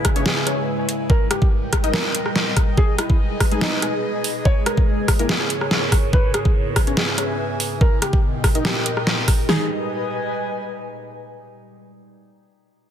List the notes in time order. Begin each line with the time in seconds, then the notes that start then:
Already playing: G#2 C#3 G#3 E4 B4 E5 G#5
0.05 kick, cross-stick, closed hi-hat
0.16 C#4 G#4 C#5, closed hi-hat
0.26 G#4, snare
0.47 C#4 G#4 C#5, cross-stick, closed hi-hat
0.89 closed hi-hat
1.10 A#2 G3 D#4 A#4, kick
1.31 G4, cross-stick, closed hi-hat
1.40 G5, kick
1.47 A#4
1.71 D#5, kick, cross-stick, closed hi-hat
1.84 D#4 A#4 D#5, closed hi-hat
1.94 A#4, snare
2.15 closed hi-hat
2.26 cross-stick
2.36 snare
2.57 kick, cross-stick, closed hi-hat
2.77 B2 G#3 D#4 G#4 B4, kick
2.98 E4, cross-stick, closed hi-hat
3.10 kick
3.16 B4
3.40 kick, cross-stick, open hi-hat
3.52 G#3 D#4 G#4, closed hi-hat
3.61 D#4, snare
3.82 G#3 D#4 G#4, cross-stick, closed hi-hat
4.24 open hi-hat
4.45 G#2 C#3 A#3 E4 A#4 C#5, kick
4.66 A#4, cross-stick, closed hi-hat
4.77 kick
5.08 kick, cross-stick, open hi-hat
5.19 A#3 E4 A#4 C#5, closed hi-hat
5.29 G#4, snare
5.50 closed hi-hat
5.61 cross-stick
5.71 snare
5.92 kick, cross-stick, open hi-hat
6.13 B3 E4 G#4 B4, kick
6.34 G#4, cross-stick, closed hi-hat
6.45 B4, kick
6.74 E5, kick, cross-stick, open hi-hat
6.87 C#4 G#4 C#5 G#5, closed hi-hat
6.97 G#4, snare
7.18 C#4 G#4 C#5, cross-stick, closed hi-hat
7.60 open hi-hat
7.81 A#2 G3 D#4 G4 A#4, kick
8.02 G4 G5, cross-stick, closed hi-hat
8.09 A#4 D#5
8.13 kick
8.44 kick, cross-stick, open hi-hat
8.55 D#4 A#4 D#5, closed hi-hat
8.65 G4, snare
8.86 closed hi-hat
8.97 cross-stick
9.07 snare
9.28 kick, cross-stick, open hi-hat
9.49 G#3 D#4 G#4 B4, snare
9.56 D#5
9.62 G#5